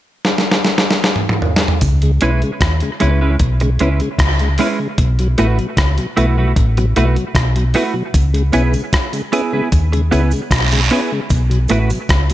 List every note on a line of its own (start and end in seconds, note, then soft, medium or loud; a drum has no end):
0.25 snare medium
0.38 snare soft
0.52 snare medium
0.65 snare medium
0.78 snare medium
0.91 snare medium
1.04 snare medium
1.16 mid tom medium
1.29 mid tom loud
1.42 floor tom medium
1.56 snare medium
1.68 floor tom medium
1.81 2.20 C#2 loud
1.81 kick loud
1.81 closed hi-hat medium
1.81 cabasa medium
2.02 2.11 C#3 medium
2.02 2.11 G#3 medium
2.02 closed hi-hat soft
2.21 2.41 B1 medium
2.21 2.41 G#3 medium
2.21 2.31 B3 medium
2.21 2.41 C#4 medium
2.21 2.31 C#4 medium
2.21 2.31 E4 medium
2.21 2.41 E4 loud
2.21 2.41 B4 loud
2.21 closed hi-hat medium
2.42 2.51 C#3 medium
2.42 2.51 G#3 medium
2.42 closed hi-hat soft
2.61 2.80 D#2 loud
2.61 kick loud
2.61 cross-stick loud
2.61 closed hi-hat medium
2.80 2.91 C#3 medium
2.80 2.91 G#3 medium
2.80 closed hi-hat soft
3.00 3.39 C#2 medium
3.00 3.19 G#3 medium
3.00 3.10 B3 medium
3.00 3.19 C#4 medium
3.00 3.11 C#4 medium
3.00 3.20 E4 medium
3.00 3.10 E4 medium
3.00 3.20 B4 medium
3.00 closed hi-hat medium
3.21 3.30 C#3 medium
3.21 3.35 G#3 medium
3.21 3.30 G#3 medium
3.21 3.35 C#4 medium
3.21 3.35 E4 medium
3.21 3.35 B4 medium
3.39 3.78 B1 medium
3.39 kick loud
3.39 closed hi-hat medium
3.60 3.70 C#3 medium
3.60 3.70 G#3 medium
3.60 muted clean electric guitar stroke medium
3.60 closed hi-hat soft
3.79 4.00 C#2 medium
3.79 3.99 G#3 medium
3.79 3.89 B3 medium
3.79 3.89 C#4 medium
3.79 3.99 C#4 medium
3.79 3.99 E4 medium
3.79 3.90 E4 medium
3.79 4.00 B4 medium
3.79 closed hi-hat medium
4.00 4.09 C#3 medium
4.00 4.09 G#3 medium
4.00 closed hi-hat soft
4.19 4.57 C#2 medium
4.19 kick loud
4.19 cross-stick loud
4.19 closed hi-hat medium
4.39 4.49 C#3 medium
4.39 4.49 G#3 medium
4.39 closed hi-hat soft
4.58 4.78 G#3 medium
4.58 4.68 B3 medium
4.58 4.78 C#4 medium
4.58 4.69 C#4 medium
4.58 4.78 E4 medium
4.58 4.69 E4 medium
4.58 4.78 B4 medium
4.58 open hi-hat medium
4.79 4.88 C#3 medium
4.79 4.88 G#3 medium
4.98 5.36 B1 loud
4.98 kick loud
4.98 closed hi-hat medium
5.19 5.28 B2 medium
5.19 5.28 F#3 medium
5.19 closed hi-hat soft
5.38 5.58 A1 medium
5.38 5.47 A3 medium
5.38 5.57 A3 medium
5.38 5.47 B3 medium
5.38 5.47 E4 medium
5.38 5.57 E4 medium
5.38 5.57 F#4 medium
5.38 5.57 B4 loud
5.38 closed hi-hat medium
5.58 5.67 B2 medium
5.58 5.67 F#3 medium
5.58 closed hi-hat soft
5.77 5.97 C#2 medium
5.77 kick loud
5.77 cross-stick loud
5.77 closed hi-hat medium
5.98 6.07 B2 medium
5.98 6.06 F#3 medium
5.98 closed hi-hat soft
6.17 6.55 B1 medium
6.17 6.35 A3 medium
6.17 6.26 A3 medium
6.17 6.26 B3 medium
6.17 6.36 E4 medium
6.17 6.26 E4 medium
6.17 6.36 F#4 medium
6.17 6.36 B4 medium
6.17 closed hi-hat medium
6.38 6.46 B2 medium
6.38 6.46 F#3 medium
6.38 6.52 A3 soft
6.38 6.51 E4 medium
6.38 6.52 F#4 medium
6.38 6.51 B4 medium
6.56 6.94 A1 medium
6.56 kick loud
6.56 closed hi-hat medium
6.77 6.86 B2 medium
6.77 6.86 F#3 medium
6.77 muted clean electric guitar stroke soft
6.77 closed hi-hat soft
6.96 7.16 B1 medium
6.96 7.05 A3 medium
6.96 7.15 A3 medium
6.96 7.06 B3 medium
6.96 7.15 E4 medium
6.96 7.06 E4 medium
6.96 7.15 F#4 medium
6.96 7.15 B4 medium
6.96 closed hi-hat medium
7.16 7.25 B2 medium
7.16 7.25 F#3 medium
7.16 closed hi-hat soft
7.35 7.73 B1 loud
7.35 kick loud
7.35 cross-stick loud
7.35 closed hi-hat medium
7.56 7.65 B2 medium
7.56 7.64 F#3 medium
7.56 closed hi-hat soft
7.74 7.84 A3 medium
7.74 7.94 A3 medium
7.74 7.84 B3 medium
7.74 7.84 E4 medium
7.74 7.94 E4 medium
7.74 7.94 F#4 medium
7.74 7.94 B4 medium
7.74 open hi-hat medium
7.94 8.03 B2 medium
7.94 8.03 F#3 medium
8.14 8.52 C#2 medium
8.14 kick loud
8.14 closed hi-hat medium
8.14 cabasa medium
8.34 8.43 C#3 medium
8.34 8.43 G#3 medium
8.34 closed hi-hat soft
8.52 8.74 B1 medium
8.52 8.62 B3 medium
8.52 8.72 B3 medium
8.52 8.63 C#4 medium
8.52 8.63 E4 medium
8.52 8.73 E4 medium
8.52 8.73 G#4 medium
8.52 8.73 B4 medium
8.52 closed hi-hat medium
8.52 cabasa soft
8.73 8.82 C#3 medium
8.73 8.82 G#3 medium
8.73 closed hi-hat soft
8.73 cabasa medium
8.93 kick loud
8.93 cross-stick loud
8.93 closed hi-hat medium
9.13 9.22 C#3 medium
9.13 9.22 G#3 medium
9.13 closed hi-hat soft
9.13 cabasa medium
9.32 9.42 B3 medium
9.32 9.51 B3 medium
9.32 9.42 C#4 medium
9.32 9.42 E4 medium
9.32 9.52 E4 medium
9.32 9.52 G#4 medium
9.32 9.52 B4 medium
9.32 closed hi-hat medium
9.32 cabasa medium
9.53 9.62 C#3 medium
9.53 9.62 G#3 medium
9.53 9.68 B3 medium
9.53 9.68 E4 medium
9.53 9.67 G#4 medium
9.53 9.67 B4 medium
9.72 10.10 D#2 medium
9.72 kick loud
9.72 closed hi-hat medium
9.72 cabasa medium
9.93 10.02 C#3 medium
9.93 10.02 G#3 medium
9.93 muted clean electric guitar stroke soft
9.93 closed hi-hat soft
10.11 10.32 C#2 medium
10.11 10.30 B3 medium
10.11 10.21 B3 medium
10.11 10.21 C#4 medium
10.11 10.31 E4 medium
10.11 10.21 E4 medium
10.11 10.31 G#4 medium
10.11 10.31 B4 medium
10.11 closed hi-hat medium
10.11 cabasa medium
10.31 10.41 C#3 medium
10.31 10.41 G#3 medium
10.31 closed hi-hat soft
10.31 cabasa medium
10.51 10.89 B1 medium
10.51 kick loud
10.51 cross-stick loud
10.51 closed hi-hat medium
10.51 cabasa medium
10.51 long guiro medium
10.71 10.81 C#3 medium
10.71 10.81 G#3 medium
10.71 closed hi-hat soft
10.71 cabasa soft
10.90 11.10 B3 medium
10.90 11.00 B3 medium
10.90 11.00 C#4 medium
10.90 11.10 E4 medium
10.90 11.01 E4 medium
10.90 11.11 G#4 medium
10.90 11.11 B4 medium
10.90 open hi-hat medium
11.12 11.20 C#3 medium
11.12 11.20 G#3 medium
11.30 11.68 B1 loud
11.30 kick loud
11.30 closed hi-hat medium
11.30 cabasa medium
11.50 11.59 B2 soft
11.50 11.59 F#3 medium
11.50 closed hi-hat soft
11.68 11.90 A1 medium
11.68 11.78 A3 medium
11.68 11.89 A3 medium
11.68 11.79 B3 medium
11.68 11.79 E4 medium
11.68 11.89 E4 medium
11.68 11.89 F#4 medium
11.68 11.89 B4 loud
11.68 closed hi-hat medium
11.68 cabasa medium
11.90 11.99 B2 medium
11.90 11.99 F#3 medium
11.90 closed hi-hat soft
11.90 cabasa medium
12.09 12.29 C#2 medium
12.09 kick loud
12.09 cross-stick loud
12.09 closed hi-hat medium
12.30 12.34 B2 medium
12.30 12.34 F#3 medium
12.30 closed hi-hat soft
12.30 cabasa medium